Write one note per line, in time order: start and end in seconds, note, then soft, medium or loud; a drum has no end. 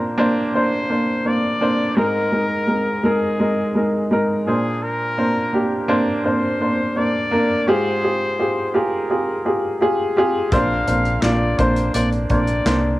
0.00 0.15 A#2 medium
0.00 0.18 A#3 medium
0.00 0.18 D4 medium
0.00 1.99 F4 medium
0.00 0.19 A#4 medium
0.00 0.19 C5 medium
0.18 0.50 A#3 medium
0.18 0.50 D4 medium
0.18 0.50 C5 medium
0.54 0.86 A#3 medium
0.54 0.86 D4 medium
0.54 1.28 C5 medium
0.54 0.86 C5 medium
0.90 1.21 A#3 medium
0.90 1.21 D4 soft
0.90 1.22 C5 medium
1.25 1.57 A#3 medium
1.25 1.57 D4 soft
1.25 1.57 C5 medium
1.25 1.98 D5 medium
1.61 1.92 A#3 medium
1.61 1.93 D4 medium
1.61 1.93 C5 medium
1.97 3.00 G#2 medium
1.97 2.28 G#3 medium
1.97 2.28 D#4 medium
1.97 3.07 A#4 medium
1.97 2.29 A#4 medium
2.32 2.64 G#3 medium
2.32 2.64 D#4 medium
2.32 2.64 A#4 medium
2.67 2.99 G#3 medium
2.67 2.99 D#4 medium
2.67 3.00 A#4 medium
3.03 3.35 G#3 medium
3.03 3.36 D#4 medium
3.03 4.12 G#4 medium
3.03 3.36 A#4 medium
3.40 3.71 G#3 medium
3.40 3.71 D#4 medium
3.40 3.72 A#4 medium
3.75 4.06 G#3 medium
3.75 4.07 D#4 medium
3.75 4.07 A#4 medium
4.11 4.42 G#3 medium
4.11 4.42 D#4 medium
4.11 4.43 A#4 medium
4.47 5.50 A#2 medium
4.47 5.09 A#3 medium
4.47 5.10 D4 medium
4.47 4.84 G#4 medium
4.47 5.10 C5 medium
4.83 5.89 A#4 medium
5.18 5.49 A#3 medium
5.18 5.49 D4 medium
5.18 5.50 C5 medium
5.53 5.85 A#3 medium
5.53 5.85 D4 medium
5.53 5.85 G4 medium
5.88 6.20 A#3 medium
5.88 6.20 D4 medium
5.88 6.21 C5 medium
6.24 6.56 A#3 medium
6.24 6.56 D4 medium
6.24 6.99 C5 medium
6.24 6.57 C5 medium
6.60 6.92 A#3 medium
6.60 6.92 D4 medium
6.60 6.92 C5 medium
6.96 7.27 A#3 medium
6.96 7.28 D4 medium
6.96 7.28 C5 medium
6.96 7.69 D5 medium
7.31 7.63 A#3 medium
7.31 7.63 D4 medium
7.31 7.63 A#4 medium
7.67 8.71 G#2 medium
7.67 7.99 F4 medium
7.67 7.99 G4 medium
7.67 7.99 G#4 medium
7.67 8.76 C5 loud
8.03 8.35 F4 soft
8.03 8.34 G4 medium
8.03 8.35 G#4 medium
8.39 8.70 F4 medium
8.39 8.70 G4 medium
8.39 8.71 G#4 medium
8.74 9.06 F4 medium
8.74 9.05 G4 medium
8.74 9.06 G#4 medium
8.74 9.82 A#4 medium
9.09 9.41 F4 medium
9.09 9.41 G4 medium
9.09 9.42 G#4 medium
9.45 9.77 F4 medium
9.45 9.77 G4 medium
9.45 9.77 G#4 medium
9.81 10.12 F4 medium
9.81 10.12 G4 medium
9.81 10.13 G#4 medium
10.17 10.48 F4 medium
10.17 10.48 G4 medium
10.17 10.49 G#4 medium
10.52 10.81 A#1 medium
10.52 11.56 A#2 medium
10.52 10.84 A#3 medium
10.52 10.84 D4 medium
10.52 10.84 C5 medium
10.52 11.23 F5 medium
10.52 kick loud
10.52 closed hi-hat medium
10.87 11.17 A#1 medium
10.87 11.19 A#3 medium
10.87 11.19 D4 medium
10.87 11.19 C5 medium
10.87 closed hi-hat medium
11.05 closed hi-hat soft
11.22 11.53 A#1 medium
11.22 11.55 A#3 medium
11.22 11.55 D4 medium
11.22 11.55 F4 medium
11.22 11.60 D5 medium
11.22 snare medium
11.22 clap medium
11.22 closed hi-hat medium
11.58 11.88 A#1 medium
11.58 11.90 A#3 medium
11.58 11.90 D4 medium
11.58 11.93 C5 medium
11.58 11.91 C5 medium
11.58 kick medium
11.58 closed hi-hat medium
11.76 closed hi-hat soft
11.94 12.24 A#1 medium
11.94 12.26 A#3 medium
11.94 12.27 D4 medium
11.94 12.27 C5 medium
11.94 12.10 D5 medium
11.94 closed hi-hat medium
12.12 closed hi-hat soft
12.30 12.60 A#1 medium
12.30 12.61 A#3 medium
12.30 12.62 D4 medium
12.30 12.62 C5 medium
12.30 12.98 D5 medium
12.30 kick medium
12.30 closed hi-hat medium
12.47 closed hi-hat soft
12.65 12.95 C2 medium
12.65 12.97 A#3 medium
12.65 12.98 D4 medium
12.65 12.98 C5 medium
12.65 snare medium
12.65 clap medium
12.65 closed hi-hat medium